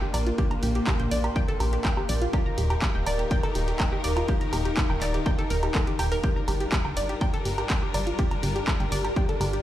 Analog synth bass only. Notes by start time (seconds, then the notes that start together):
0.14 A#1
0.63 A#1
1.00 A#1
1.11 A#1
1.60 A#1
2.09 A#1
2.58 D#1
2.95 D#1
3.07 D#1
3.55 D#1
4.04 D#1
4.53 D#1
4.90 D#1
5.02 D#1
5.50 D#1
5.99 D#1
6.48 G1
6.85 G1
6.97 G1
7.46 G1
7.94 G1
8.43 G1
8.80 G1
8.92 G1
9.41 G1